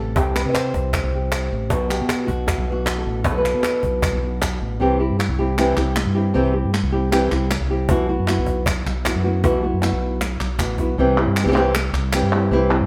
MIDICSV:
0, 0, Header, 1, 6, 480
1, 0, Start_track
1, 0, Tempo, 385852
1, 208, Time_signature, 4, 2, 24, 8
1, 16002, End_track
2, 0, Start_track
2, 0, Title_t, "Nylon-string guitar"
2, 0, Program_c, 0, 24
2, 0, Note_on_c, 0, 48, 74
2, 0, Note_on_c, 0, 52, 52
2, 0, Note_on_c, 0, 60, 42
2, 0, Note_on_c, 0, 64, 43
2, 0, Note_on_c, 0, 69, 89
2, 181, Note_off_c, 0, 48, 0
2, 190, Note_off_c, 0, 60, 0
2, 191, Note_off_c, 0, 64, 0
2, 196, Note_on_c, 0, 67, 89
2, 214, Note_on_c, 0, 48, 76
2, 439, Note_off_c, 0, 69, 0
2, 443, Note_on_c, 0, 71, 86
2, 599, Note_off_c, 0, 71, 0
2, 606, Note_on_c, 0, 75, 63
2, 663, Note_off_c, 0, 75, 0
2, 668, Note_on_c, 0, 72, 77
2, 923, Note_off_c, 0, 67, 0
2, 1432, Note_on_c, 0, 67, 45
2, 1880, Note_off_c, 0, 72, 0
2, 2106, Note_off_c, 0, 48, 0
2, 2113, Note_off_c, 0, 67, 0
2, 2133, Note_on_c, 0, 47, 81
2, 2142, Note_on_c, 0, 66, 82
2, 2176, Note_off_c, 0, 52, 0
2, 2361, Note_on_c, 0, 67, 77
2, 2808, Note_off_c, 0, 66, 0
2, 2823, Note_on_c, 0, 66, 90
2, 2847, Note_off_c, 0, 67, 0
2, 3068, Note_on_c, 0, 64, 77
2, 3352, Note_on_c, 0, 52, 50
2, 3369, Note_off_c, 0, 66, 0
2, 3384, Note_on_c, 0, 66, 84
2, 3709, Note_on_c, 0, 69, 74
2, 3882, Note_off_c, 0, 64, 0
2, 4040, Note_off_c, 0, 66, 0
2, 4045, Note_off_c, 0, 47, 0
2, 4046, Note_on_c, 0, 71, 90
2, 4060, Note_on_c, 0, 47, 78
2, 4111, Note_off_c, 0, 69, 0
2, 4126, Note_on_c, 0, 69, 83
2, 4189, Note_off_c, 0, 71, 0
2, 4204, Note_on_c, 0, 71, 87
2, 4702, Note_off_c, 0, 69, 0
2, 5276, Note_on_c, 0, 66, 46
2, 5958, Note_off_c, 0, 52, 0
2, 5959, Note_off_c, 0, 66, 0
2, 5963, Note_off_c, 0, 47, 0
2, 5966, Note_off_c, 0, 71, 0
2, 5968, Note_on_c, 0, 48, 82
2, 5973, Note_on_c, 0, 52, 72
2, 5982, Note_on_c, 0, 64, 84
2, 5983, Note_on_c, 0, 60, 90
2, 5991, Note_on_c, 0, 67, 92
2, 6199, Note_off_c, 0, 67, 0
2, 6204, Note_off_c, 0, 48, 0
2, 6206, Note_off_c, 0, 52, 0
2, 6211, Note_off_c, 0, 60, 0
2, 6211, Note_off_c, 0, 64, 0
2, 6214, Note_on_c, 0, 67, 50
2, 6229, Note_on_c, 0, 64, 56
2, 6232, Note_on_c, 0, 60, 39
2, 6441, Note_off_c, 0, 60, 0
2, 6443, Note_off_c, 0, 67, 0
2, 6448, Note_off_c, 0, 64, 0
2, 6703, Note_on_c, 0, 67, 59
2, 6712, Note_on_c, 0, 64, 57
2, 6724, Note_on_c, 0, 60, 48
2, 6929, Note_off_c, 0, 60, 0
2, 6932, Note_off_c, 0, 67, 0
2, 6935, Note_on_c, 0, 48, 68
2, 6936, Note_off_c, 0, 64, 0
2, 6940, Note_on_c, 0, 52, 84
2, 6944, Note_on_c, 0, 60, 75
2, 6951, Note_on_c, 0, 64, 80
2, 6956, Note_on_c, 0, 67, 83
2, 7162, Note_off_c, 0, 67, 0
2, 7168, Note_off_c, 0, 48, 0
2, 7169, Note_off_c, 0, 64, 0
2, 7170, Note_off_c, 0, 52, 0
2, 7173, Note_off_c, 0, 60, 0
2, 7177, Note_on_c, 0, 67, 56
2, 7184, Note_on_c, 0, 64, 53
2, 7193, Note_on_c, 0, 60, 37
2, 7406, Note_off_c, 0, 64, 0
2, 7409, Note_off_c, 0, 67, 0
2, 7411, Note_off_c, 0, 60, 0
2, 7647, Note_on_c, 0, 67, 51
2, 7662, Note_on_c, 0, 64, 46
2, 7673, Note_on_c, 0, 60, 39
2, 7885, Note_off_c, 0, 60, 0
2, 7885, Note_off_c, 0, 67, 0
2, 7886, Note_on_c, 0, 48, 90
2, 7889, Note_off_c, 0, 64, 0
2, 7895, Note_on_c, 0, 52, 82
2, 7900, Note_on_c, 0, 60, 87
2, 7904, Note_on_c, 0, 64, 80
2, 7906, Note_on_c, 0, 67, 94
2, 8115, Note_off_c, 0, 67, 0
2, 8124, Note_off_c, 0, 48, 0
2, 8129, Note_off_c, 0, 52, 0
2, 8130, Note_on_c, 0, 67, 48
2, 8131, Note_off_c, 0, 60, 0
2, 8133, Note_off_c, 0, 64, 0
2, 8149, Note_on_c, 0, 64, 44
2, 8154, Note_on_c, 0, 60, 41
2, 8363, Note_off_c, 0, 60, 0
2, 8365, Note_off_c, 0, 64, 0
2, 8366, Note_off_c, 0, 67, 0
2, 8612, Note_on_c, 0, 67, 60
2, 8626, Note_on_c, 0, 64, 53
2, 8637, Note_on_c, 0, 60, 45
2, 8840, Note_off_c, 0, 60, 0
2, 8846, Note_on_c, 0, 48, 70
2, 8847, Note_off_c, 0, 67, 0
2, 8848, Note_off_c, 0, 64, 0
2, 8855, Note_on_c, 0, 52, 75
2, 8855, Note_on_c, 0, 60, 73
2, 8862, Note_on_c, 0, 67, 93
2, 8863, Note_on_c, 0, 64, 88
2, 9080, Note_off_c, 0, 67, 0
2, 9084, Note_off_c, 0, 48, 0
2, 9089, Note_off_c, 0, 52, 0
2, 9089, Note_off_c, 0, 60, 0
2, 9093, Note_off_c, 0, 64, 0
2, 9095, Note_on_c, 0, 67, 56
2, 9110, Note_on_c, 0, 64, 48
2, 9113, Note_on_c, 0, 60, 47
2, 9321, Note_off_c, 0, 60, 0
2, 9327, Note_off_c, 0, 64, 0
2, 9329, Note_off_c, 0, 67, 0
2, 9584, Note_on_c, 0, 67, 52
2, 9594, Note_on_c, 0, 64, 49
2, 9604, Note_on_c, 0, 60, 43
2, 9813, Note_off_c, 0, 67, 0
2, 9819, Note_off_c, 0, 64, 0
2, 9823, Note_off_c, 0, 60, 0
2, 9823, Note_on_c, 0, 52, 80
2, 9825, Note_on_c, 0, 47, 91
2, 9832, Note_on_c, 0, 59, 80
2, 9841, Note_on_c, 0, 66, 91
2, 9842, Note_on_c, 0, 64, 83
2, 10048, Note_off_c, 0, 66, 0
2, 10053, Note_off_c, 0, 52, 0
2, 10054, Note_off_c, 0, 47, 0
2, 10057, Note_off_c, 0, 59, 0
2, 10059, Note_off_c, 0, 64, 0
2, 10063, Note_on_c, 0, 66, 51
2, 10074, Note_on_c, 0, 64, 41
2, 10081, Note_on_c, 0, 59, 49
2, 10293, Note_off_c, 0, 66, 0
2, 10298, Note_off_c, 0, 64, 0
2, 10302, Note_off_c, 0, 59, 0
2, 10307, Note_on_c, 0, 66, 65
2, 10313, Note_on_c, 0, 64, 53
2, 10323, Note_on_c, 0, 59, 51
2, 10774, Note_off_c, 0, 64, 0
2, 10775, Note_off_c, 0, 66, 0
2, 10777, Note_off_c, 0, 59, 0
2, 11263, Note_on_c, 0, 52, 51
2, 11269, Note_on_c, 0, 59, 53
2, 11272, Note_on_c, 0, 64, 63
2, 11283, Note_on_c, 0, 66, 64
2, 11482, Note_off_c, 0, 66, 0
2, 11492, Note_off_c, 0, 52, 0
2, 11495, Note_off_c, 0, 59, 0
2, 11497, Note_off_c, 0, 64, 0
2, 11497, Note_on_c, 0, 66, 46
2, 11510, Note_on_c, 0, 64, 46
2, 11515, Note_on_c, 0, 59, 42
2, 11729, Note_off_c, 0, 66, 0
2, 11734, Note_off_c, 0, 59, 0
2, 11736, Note_off_c, 0, 64, 0
2, 11741, Note_on_c, 0, 47, 71
2, 11744, Note_on_c, 0, 52, 84
2, 11749, Note_on_c, 0, 59, 71
2, 11753, Note_on_c, 0, 64, 89
2, 11758, Note_on_c, 0, 66, 93
2, 11968, Note_off_c, 0, 66, 0
2, 11971, Note_off_c, 0, 47, 0
2, 11973, Note_off_c, 0, 52, 0
2, 11975, Note_off_c, 0, 59, 0
2, 11977, Note_off_c, 0, 64, 0
2, 11983, Note_on_c, 0, 66, 56
2, 11995, Note_on_c, 0, 64, 47
2, 12000, Note_on_c, 0, 59, 40
2, 12194, Note_off_c, 0, 66, 0
2, 12205, Note_off_c, 0, 64, 0
2, 12209, Note_on_c, 0, 66, 59
2, 12216, Note_off_c, 0, 59, 0
2, 12219, Note_on_c, 0, 64, 45
2, 12231, Note_on_c, 0, 59, 48
2, 12684, Note_off_c, 0, 66, 0
2, 12689, Note_off_c, 0, 64, 0
2, 12692, Note_off_c, 0, 59, 0
2, 13170, Note_on_c, 0, 52, 56
2, 13176, Note_on_c, 0, 59, 51
2, 13186, Note_on_c, 0, 64, 54
2, 13191, Note_on_c, 0, 66, 56
2, 13404, Note_off_c, 0, 52, 0
2, 13407, Note_off_c, 0, 59, 0
2, 13411, Note_off_c, 0, 66, 0
2, 13412, Note_off_c, 0, 64, 0
2, 13425, Note_on_c, 0, 66, 50
2, 13434, Note_on_c, 0, 64, 44
2, 13443, Note_on_c, 0, 59, 37
2, 13651, Note_off_c, 0, 66, 0
2, 13656, Note_off_c, 0, 64, 0
2, 13660, Note_off_c, 0, 59, 0
2, 13661, Note_on_c, 0, 48, 82
2, 13671, Note_on_c, 0, 52, 92
2, 13680, Note_on_c, 0, 60, 92
2, 13684, Note_on_c, 0, 64, 90
2, 13687, Note_on_c, 0, 67, 96
2, 13889, Note_off_c, 0, 48, 0
2, 13894, Note_off_c, 0, 52, 0
2, 13896, Note_off_c, 0, 67, 0
2, 13898, Note_off_c, 0, 60, 0
2, 13900, Note_off_c, 0, 64, 0
2, 13911, Note_on_c, 0, 67, 58
2, 13920, Note_on_c, 0, 64, 60
2, 13934, Note_on_c, 0, 60, 46
2, 14201, Note_off_c, 0, 60, 0
2, 14208, Note_off_c, 0, 64, 0
2, 14213, Note_off_c, 0, 67, 0
2, 14214, Note_on_c, 0, 52, 56
2, 14216, Note_on_c, 0, 60, 55
2, 14223, Note_on_c, 0, 64, 66
2, 14228, Note_on_c, 0, 67, 61
2, 14255, Note_off_c, 0, 52, 0
2, 14258, Note_off_c, 0, 60, 0
2, 14262, Note_off_c, 0, 64, 0
2, 14269, Note_off_c, 0, 67, 0
2, 14270, Note_on_c, 0, 52, 74
2, 14273, Note_on_c, 0, 60, 67
2, 14277, Note_on_c, 0, 64, 70
2, 14284, Note_on_c, 0, 67, 79
2, 14311, Note_off_c, 0, 52, 0
2, 14314, Note_off_c, 0, 60, 0
2, 14326, Note_off_c, 0, 64, 0
2, 14326, Note_on_c, 0, 52, 81
2, 14329, Note_on_c, 0, 60, 91
2, 14330, Note_off_c, 0, 67, 0
2, 14341, Note_on_c, 0, 64, 83
2, 14345, Note_on_c, 0, 67, 92
2, 14370, Note_off_c, 0, 52, 0
2, 14374, Note_off_c, 0, 60, 0
2, 14379, Note_off_c, 0, 64, 0
2, 14379, Note_off_c, 0, 67, 0
2, 14385, Note_on_c, 0, 52, 85
2, 14386, Note_on_c, 0, 48, 77
2, 14389, Note_on_c, 0, 60, 92
2, 14394, Note_on_c, 0, 64, 98
2, 14394, Note_on_c, 0, 67, 94
2, 14610, Note_off_c, 0, 48, 0
2, 14610, Note_off_c, 0, 52, 0
2, 14612, Note_off_c, 0, 60, 0
2, 14614, Note_off_c, 0, 64, 0
2, 14614, Note_off_c, 0, 67, 0
2, 15094, Note_on_c, 0, 52, 57
2, 15101, Note_on_c, 0, 60, 67
2, 15110, Note_on_c, 0, 64, 63
2, 15112, Note_on_c, 0, 67, 68
2, 15323, Note_off_c, 0, 52, 0
2, 15326, Note_off_c, 0, 60, 0
2, 15329, Note_off_c, 0, 67, 0
2, 15331, Note_off_c, 0, 64, 0
2, 15344, Note_on_c, 0, 67, 59
2, 15356, Note_on_c, 0, 64, 47
2, 15361, Note_on_c, 0, 60, 44
2, 15566, Note_on_c, 0, 48, 88
2, 15567, Note_off_c, 0, 60, 0
2, 15568, Note_off_c, 0, 67, 0
2, 15574, Note_off_c, 0, 64, 0
2, 15576, Note_on_c, 0, 52, 93
2, 15582, Note_on_c, 0, 60, 97
2, 15588, Note_on_c, 0, 64, 96
2, 15594, Note_on_c, 0, 67, 91
2, 15797, Note_off_c, 0, 67, 0
2, 15798, Note_off_c, 0, 48, 0
2, 15803, Note_off_c, 0, 52, 0
2, 15804, Note_off_c, 0, 64, 0
2, 15806, Note_off_c, 0, 60, 0
2, 15812, Note_on_c, 0, 67, 48
2, 15819, Note_on_c, 0, 64, 52
2, 15827, Note_on_c, 0, 60, 51
2, 16002, Note_off_c, 0, 60, 0
2, 16002, Note_off_c, 0, 64, 0
2, 16002, Note_off_c, 0, 67, 0
2, 16002, End_track
3, 0, Start_track
3, 0, Title_t, "Fretless electric bass"
3, 0, Program_c, 1, 35
3, 0, Note_on_c, 1, 33, 77
3, 188, Note_off_c, 1, 33, 0
3, 202, Note_on_c, 1, 36, 84
3, 539, Note_off_c, 1, 36, 0
3, 567, Note_on_c, 1, 48, 63
3, 902, Note_off_c, 1, 48, 0
3, 927, Note_on_c, 1, 36, 74
3, 1262, Note_off_c, 1, 36, 0
3, 1289, Note_on_c, 1, 36, 73
3, 1847, Note_off_c, 1, 36, 0
3, 1896, Note_on_c, 1, 33, 75
3, 2116, Note_off_c, 1, 33, 0
3, 2137, Note_on_c, 1, 35, 88
3, 2468, Note_off_c, 1, 35, 0
3, 2501, Note_on_c, 1, 47, 79
3, 2831, Note_off_c, 1, 47, 0
3, 2854, Note_on_c, 1, 35, 80
3, 3188, Note_off_c, 1, 35, 0
3, 3210, Note_on_c, 1, 35, 75
3, 3769, Note_off_c, 1, 35, 0
3, 3815, Note_on_c, 1, 33, 82
3, 4038, Note_off_c, 1, 33, 0
3, 4046, Note_on_c, 1, 35, 95
3, 4385, Note_off_c, 1, 35, 0
3, 4406, Note_on_c, 1, 47, 73
3, 4745, Note_off_c, 1, 47, 0
3, 4779, Note_on_c, 1, 35, 89
3, 5112, Note_off_c, 1, 35, 0
3, 5138, Note_on_c, 1, 35, 86
3, 5695, Note_off_c, 1, 35, 0
3, 5740, Note_on_c, 1, 33, 75
3, 5962, Note_off_c, 1, 33, 0
3, 5981, Note_on_c, 1, 36, 88
3, 6314, Note_off_c, 1, 36, 0
3, 6347, Note_on_c, 1, 43, 72
3, 6566, Note_off_c, 1, 43, 0
3, 6579, Note_on_c, 1, 36, 90
3, 7136, Note_off_c, 1, 36, 0
3, 7180, Note_on_c, 1, 36, 83
3, 7514, Note_off_c, 1, 36, 0
3, 7531, Note_on_c, 1, 43, 79
3, 7870, Note_off_c, 1, 43, 0
3, 7904, Note_on_c, 1, 36, 87
3, 8237, Note_off_c, 1, 36, 0
3, 8267, Note_on_c, 1, 43, 68
3, 8487, Note_off_c, 1, 43, 0
3, 8502, Note_on_c, 1, 36, 96
3, 9058, Note_off_c, 1, 36, 0
3, 9104, Note_on_c, 1, 36, 85
3, 9437, Note_off_c, 1, 36, 0
3, 9462, Note_on_c, 1, 36, 77
3, 9796, Note_off_c, 1, 36, 0
3, 9831, Note_on_c, 1, 35, 99
3, 10161, Note_off_c, 1, 35, 0
3, 10192, Note_on_c, 1, 42, 66
3, 10410, Note_off_c, 1, 42, 0
3, 10431, Note_on_c, 1, 35, 95
3, 10983, Note_off_c, 1, 35, 0
3, 11025, Note_on_c, 1, 35, 84
3, 11357, Note_off_c, 1, 35, 0
3, 11388, Note_on_c, 1, 42, 74
3, 11718, Note_off_c, 1, 42, 0
3, 11748, Note_on_c, 1, 35, 94
3, 12078, Note_off_c, 1, 35, 0
3, 12109, Note_on_c, 1, 42, 80
3, 12327, Note_off_c, 1, 42, 0
3, 12348, Note_on_c, 1, 35, 84
3, 12899, Note_off_c, 1, 35, 0
3, 12942, Note_on_c, 1, 35, 79
3, 13163, Note_off_c, 1, 35, 0
3, 13188, Note_on_c, 1, 33, 69
3, 13399, Note_off_c, 1, 33, 0
3, 13423, Note_on_c, 1, 35, 81
3, 13636, Note_off_c, 1, 35, 0
3, 13661, Note_on_c, 1, 36, 99
3, 13992, Note_off_c, 1, 36, 0
3, 14011, Note_on_c, 1, 43, 77
3, 14235, Note_off_c, 1, 43, 0
3, 14251, Note_on_c, 1, 36, 109
3, 14808, Note_off_c, 1, 36, 0
3, 14844, Note_on_c, 1, 36, 92
3, 15181, Note_off_c, 1, 36, 0
3, 15205, Note_on_c, 1, 43, 87
3, 15541, Note_off_c, 1, 43, 0
3, 15565, Note_on_c, 1, 36, 96
3, 15901, Note_off_c, 1, 36, 0
3, 15930, Note_on_c, 1, 43, 73
3, 16002, Note_off_c, 1, 43, 0
3, 16002, End_track
4, 0, Start_track
4, 0, Title_t, "Cajon"
4, 197, Note_on_c, 9, 36, 105
4, 322, Note_off_c, 9, 36, 0
4, 435, Note_on_c, 9, 38, 28
4, 559, Note_off_c, 9, 38, 0
4, 679, Note_on_c, 9, 38, 89
4, 803, Note_off_c, 9, 38, 0
4, 924, Note_on_c, 9, 36, 72
4, 1048, Note_off_c, 9, 36, 0
4, 1158, Note_on_c, 9, 36, 91
4, 1158, Note_on_c, 9, 38, 29
4, 1282, Note_off_c, 9, 36, 0
4, 1282, Note_off_c, 9, 38, 0
4, 1641, Note_on_c, 9, 38, 92
4, 1766, Note_off_c, 9, 38, 0
4, 2117, Note_on_c, 9, 36, 108
4, 2242, Note_off_c, 9, 36, 0
4, 2599, Note_on_c, 9, 38, 89
4, 2724, Note_off_c, 9, 38, 0
4, 2839, Note_on_c, 9, 36, 70
4, 2963, Note_off_c, 9, 36, 0
4, 3083, Note_on_c, 9, 36, 99
4, 3083, Note_on_c, 9, 38, 31
4, 3207, Note_off_c, 9, 36, 0
4, 3207, Note_off_c, 9, 38, 0
4, 3323, Note_on_c, 9, 38, 32
4, 3447, Note_off_c, 9, 38, 0
4, 3557, Note_on_c, 9, 38, 97
4, 3681, Note_off_c, 9, 38, 0
4, 4036, Note_on_c, 9, 36, 101
4, 4160, Note_off_c, 9, 36, 0
4, 4281, Note_on_c, 9, 38, 30
4, 4406, Note_off_c, 9, 38, 0
4, 4516, Note_on_c, 9, 38, 92
4, 4640, Note_off_c, 9, 38, 0
4, 4763, Note_on_c, 9, 36, 70
4, 4887, Note_off_c, 9, 36, 0
4, 5005, Note_on_c, 9, 36, 91
4, 5130, Note_off_c, 9, 36, 0
4, 5257, Note_on_c, 9, 38, 30
4, 5381, Note_off_c, 9, 38, 0
4, 5493, Note_on_c, 9, 36, 70
4, 5493, Note_on_c, 9, 38, 100
4, 5618, Note_off_c, 9, 36, 0
4, 5618, Note_off_c, 9, 38, 0
4, 9812, Note_on_c, 9, 36, 102
4, 9936, Note_off_c, 9, 36, 0
4, 10057, Note_on_c, 9, 38, 30
4, 10181, Note_off_c, 9, 38, 0
4, 10290, Note_on_c, 9, 38, 90
4, 10415, Note_off_c, 9, 38, 0
4, 10529, Note_on_c, 9, 36, 73
4, 10653, Note_off_c, 9, 36, 0
4, 10772, Note_on_c, 9, 36, 94
4, 10897, Note_off_c, 9, 36, 0
4, 11258, Note_on_c, 9, 38, 96
4, 11383, Note_off_c, 9, 38, 0
4, 11740, Note_on_c, 9, 36, 107
4, 11865, Note_off_c, 9, 36, 0
4, 11987, Note_on_c, 9, 38, 29
4, 12111, Note_off_c, 9, 38, 0
4, 12214, Note_on_c, 9, 38, 68
4, 12339, Note_off_c, 9, 38, 0
4, 12701, Note_on_c, 9, 38, 88
4, 12826, Note_off_c, 9, 38, 0
4, 13170, Note_on_c, 9, 36, 88
4, 13294, Note_off_c, 9, 36, 0
4, 13413, Note_on_c, 9, 36, 72
4, 13537, Note_off_c, 9, 36, 0
4, 16002, End_track
5, 0, Start_track
5, 0, Title_t, "Muted nylon-string guitar strokes"
5, 6455, Note_on_c, 9, 29, 59
5, 6580, Note_off_c, 9, 29, 0
5, 7417, Note_on_c, 9, 29, 63
5, 7541, Note_off_c, 9, 29, 0
5, 8374, Note_on_c, 9, 29, 66
5, 8498, Note_off_c, 9, 29, 0
5, 9333, Note_on_c, 9, 29, 76
5, 9457, Note_off_c, 9, 29, 0
5, 10784, Note_on_c, 9, 29, 64
5, 10909, Note_off_c, 9, 29, 0
5, 12706, Note_on_c, 9, 29, 66
5, 12831, Note_off_c, 9, 29, 0
5, 14625, Note_on_c, 9, 29, 68
5, 14749, Note_off_c, 9, 29, 0
5, 16002, End_track
6, 0, Start_track
6, 0, Title_t, "Drums"
6, 211, Note_on_c, 9, 39, 46
6, 335, Note_off_c, 9, 39, 0
6, 449, Note_on_c, 9, 39, 81
6, 574, Note_off_c, 9, 39, 0
6, 689, Note_on_c, 9, 39, 72
6, 813, Note_off_c, 9, 39, 0
6, 1169, Note_on_c, 9, 39, 83
6, 1294, Note_off_c, 9, 39, 0
6, 1643, Note_on_c, 9, 39, 89
6, 1767, Note_off_c, 9, 39, 0
6, 2139, Note_on_c, 9, 39, 45
6, 2264, Note_off_c, 9, 39, 0
6, 2374, Note_on_c, 9, 39, 80
6, 2498, Note_off_c, 9, 39, 0
6, 2609, Note_on_c, 9, 39, 78
6, 2734, Note_off_c, 9, 39, 0
6, 3091, Note_on_c, 9, 39, 87
6, 3215, Note_off_c, 9, 39, 0
6, 3573, Note_on_c, 9, 39, 84
6, 3698, Note_off_c, 9, 39, 0
6, 4053, Note_on_c, 9, 39, 50
6, 4178, Note_off_c, 9, 39, 0
6, 4297, Note_on_c, 9, 39, 78
6, 4421, Note_off_c, 9, 39, 0
6, 4538, Note_on_c, 9, 39, 79
6, 4663, Note_off_c, 9, 39, 0
6, 5017, Note_on_c, 9, 39, 83
6, 5142, Note_off_c, 9, 39, 0
6, 5506, Note_on_c, 9, 39, 91
6, 5630, Note_off_c, 9, 39, 0
6, 6472, Note_on_c, 9, 39, 72
6, 6596, Note_off_c, 9, 39, 0
6, 6945, Note_on_c, 9, 39, 76
6, 7070, Note_off_c, 9, 39, 0
6, 7178, Note_on_c, 9, 39, 61
6, 7302, Note_off_c, 9, 39, 0
6, 7416, Note_on_c, 9, 39, 85
6, 7541, Note_off_c, 9, 39, 0
6, 8388, Note_on_c, 9, 39, 72
6, 8512, Note_off_c, 9, 39, 0
6, 8866, Note_on_c, 9, 39, 87
6, 8990, Note_off_c, 9, 39, 0
6, 9103, Note_on_c, 9, 39, 61
6, 9227, Note_off_c, 9, 39, 0
6, 9342, Note_on_c, 9, 39, 91
6, 9467, Note_off_c, 9, 39, 0
6, 10311, Note_on_c, 9, 39, 72
6, 10435, Note_off_c, 9, 39, 0
6, 10790, Note_on_c, 9, 39, 93
6, 10914, Note_off_c, 9, 39, 0
6, 11033, Note_on_c, 9, 39, 59
6, 11157, Note_off_c, 9, 39, 0
6, 11273, Note_on_c, 9, 39, 89
6, 11397, Note_off_c, 9, 39, 0
6, 12235, Note_on_c, 9, 39, 72
6, 12360, Note_off_c, 9, 39, 0
6, 12705, Note_on_c, 9, 39, 88
6, 12829, Note_off_c, 9, 39, 0
6, 12943, Note_on_c, 9, 39, 64
6, 13068, Note_off_c, 9, 39, 0
6, 13181, Note_on_c, 9, 39, 87
6, 13305, Note_off_c, 9, 39, 0
6, 13901, Note_on_c, 9, 39, 51
6, 14025, Note_off_c, 9, 39, 0
6, 14139, Note_on_c, 9, 39, 84
6, 14263, Note_off_c, 9, 39, 0
6, 14617, Note_on_c, 9, 39, 98
6, 14741, Note_off_c, 9, 39, 0
6, 14856, Note_on_c, 9, 39, 60
6, 14981, Note_off_c, 9, 39, 0
6, 15088, Note_on_c, 9, 39, 103
6, 15212, Note_off_c, 9, 39, 0
6, 15331, Note_on_c, 9, 39, 51
6, 15455, Note_off_c, 9, 39, 0
6, 15806, Note_on_c, 9, 39, 53
6, 15930, Note_off_c, 9, 39, 0
6, 16002, End_track
0, 0, End_of_file